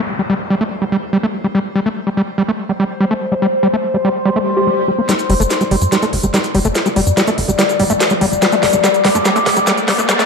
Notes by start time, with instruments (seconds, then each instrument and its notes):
Already playing: synth drone C5, downlifter
0.19 acid bass G3
0.30 acid bass G3
0.50 acid bass G3
0.61 acid bass A3
0.82 acid bass G3
0.92 acid bass G3
1.13 acid bass G3
1.23 acid bass A3
1.44 acid bass G3
1.55 acid bass G3
1.75 acid bass G3
1.86 acid bass A3
2.07 acid bass G3
2.17 acid bass G3
2.38 acid bass G3
2.48 acid bass A3
2.69 acid bass G3
2.80 acid bass G3
3.00 acid bass G3
3.11 acid bass A3
3.32 acid bass G3
3.42 acid bass G3
3.63 acid bass G3
3.73 acid bass A3
3.94 acid bass G3
4.05 acid bass G3
4.25 acid bass G3, swell
4.36 acid bass A3
4.57 acid bass G4
4.67 acid bass G3
4.88 acid bass G3
4.98 acid bass A#3
5.09 acid bass G3, synth drone D5, snare, closed hi-hat, riser, cabasa
5.19 closed hi-hat, cabasa
5.30 analog synth bass G1, acid bass G3, open hi-hat
5.40 analog synth bass G1, acid bass A3, closed hi-hat, cabasa
5.50 snare, closed hi-hat, cabasa
5.61 acid bass G3, closed hi-hat, cabasa
5.71 analog synth bass G1, acid bass G3, open hi-hat
5.81 analog synth bass G2, closed hi-hat, cabasa
5.92 acid bass G3, snare, closed hi-hat, cabasa
6.02 acid bass A3, closed hi-hat, cabasa
6.13 analog synth bass G1, open hi-hat
6.23 analog synth bass G1, acid bass G3, closed hi-hat, cabasa
6.34 acid bass G3, snare, closed hi-hat, cabasa
6.44 closed hi-hat, cabasa
6.55 analog synth bass G1, acid bass G3, open hi-hat
6.65 analog synth bass G1, acid bass A3, closed hi-hat, cabasa
6.75 snare, closed hi-hat, cabasa
6.86 acid bass G3, closed hi-hat, cabasa
6.96 analog synth bass G1, acid bass G3, open hi-hat
7.07 analog synth bass G2, closed hi-hat, cabasa
7.17 acid bass G3, snare, closed hi-hat, cabasa
7.27 acid bass A3, closed hi-hat, cabasa
7.38 analog synth bass G1, open hi-hat
7.48 analog synth bass G1, acid bass G3, closed hi-hat, cabasa
7.59 acid bass G3, snare, closed hi-hat, cabasa
7.69 closed hi-hat, cabasa
7.80 analog synth bass D1, acid bass G3, open hi-hat
7.90 analog synth bass D1, acid bass A3, closed hi-hat, cabasa
8.00 snare, closed hi-hat, cabasa
8.10 acid bass G3, closed hi-hat, cabasa
8.21 analog synth bass G1, acid bass G3, open hi-hat
8.32 analog synth bass G1, closed hi-hat, cabasa
8.42 acid bass G3, snare, closed hi-hat, cabasa
8.52 acid bass A3, closed hi-hat, cabasa
8.63 analog synth bass G1, snare, open hi-hat
8.73 analog synth bass G1, acid bass G3, closed hi-hat, cabasa
8.84 acid bass G3, snare, closed hi-hat, cabasa
8.94 closed hi-hat, cabasa
9.05 analog synth bass G1, acid bass G3, snare, open hi-hat
9.15 analog synth bass G2, acid bass A3, closed hi-hat, cabasa
9.25 acid bass G3, snare, closed hi-hat, cabasa
9.36 acid bass A3, closed hi-hat, cabasa
9.46 analog synth bass G1, snare, open hi-hat
9.56 analog synth bass G1, acid bass G3, closed hi-hat, cabasa
9.67 acid bass G3, snare, closed hi-hat, cabasa
9.77 closed hi-hat, cabasa
9.88 analog synth bass G1, acid bass G3, snare, open hi-hat
9.98 analog synth bass G1, acid bass A3, closed hi-hat, cabasa
10.09 acid bass G3, snare, closed hi-hat, cabasa
10.19 acid bass A3, snare, closed hi-hat, cabasa